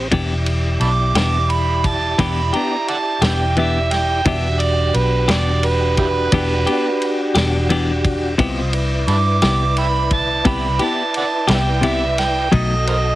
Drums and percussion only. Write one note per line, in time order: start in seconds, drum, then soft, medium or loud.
0.12 kick loud
0.12 ride medium
0.46 ride medium
0.81 ride medium
1.15 snare loud
1.15 ride medium
1.50 ride medium
1.84 kick medium
1.84 ride medium
2.19 kick loud
2.19 snare soft
2.19 ride medium
2.54 ride medium
2.88 ride soft
3.22 snare loud
3.22 ride medium
3.57 ride medium
3.91 snare soft
3.91 ride medium
4.25 kick loud
4.25 ride medium
4.60 ride medium
4.94 ride medium
5.29 snare loud
5.29 ride medium
5.63 ride medium
5.97 kick medium
5.97 ride medium
6.32 kick loud
6.32 ride medium
6.67 ride medium
7.02 ride soft
7.35 snare loud
7.35 ride medium
7.70 ride medium
8.05 kick medium
8.05 ride medium
8.39 kick loud
8.39 ride medium
8.73 ride medium
9.08 ride medium
9.42 snare loud
9.42 ride medium
9.77 ride medium
10.11 kick medium
10.11 ride medium
10.45 kick loud
10.45 ride medium
10.79 ride medium
11.14 ride medium
11.48 snare loud
11.48 ride medium
11.83 ride medium
12.18 snare soft
12.18 ride medium
12.52 kick loud
12.52 ride medium
12.87 ride medium